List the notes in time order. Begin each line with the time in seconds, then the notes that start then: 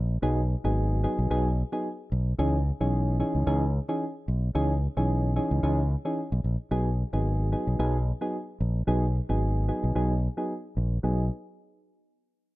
Already playing: A#1
0.22 B1 F#3 B3 D#4 G#4
0.64 G#1 F#3 B3 D#4 G#4
1.04 F#3 B3 D#4 G#4
1.19 B1
1.30 B1 F#3 B3 D#4 G#4
1.72 F#3 B3 D#4 G#4
2.12 B1
2.39 C#2 E3 C#4 D#4 G#4
2.80 B1 E3 C#4 D#4 G#4
3.20 E3 C#4 D#4 G#4
3.35 C#2
3.47 C#2 E3 C#4 D#4 G#4
3.89 E3 C#4 D#4 G#4
4.28 B1
4.55 C#2 E3 C#4 D#4 G#4
4.97 B1 E3 C#4 D#4 G#4
5.36 E3 C#4 D#4 G#4
5.51 C#2
5.63 C#2 E3 C#4 D#4 G#4
6.05 E3 C#4 D#4 G#4
6.32 B1
6.44 A#1
6.71 B1 F#3 B3 D#4 G#4
7.13 G#1 F#3 B3 D#4 G#4
7.52 F#3 B3 D#4 G#4
7.67 B1
7.79 B1 F#3 B3 D#4 G#4
8.21 F#3 B3 D#4 G#4
8.60 A#1
8.87 B1 F#3 B3 D#4 G#4
9.29 G#1 F#3 B3 D#4 G#4
9.68 F#3 B3 D#4 G#4
9.83 B1
9.95 B1 F#3 B3 D#4 G#4
10.37 F#3 B3 D#4 G#4
10.77 A#1
11.03 B1 F#3 B3 D#4 G#4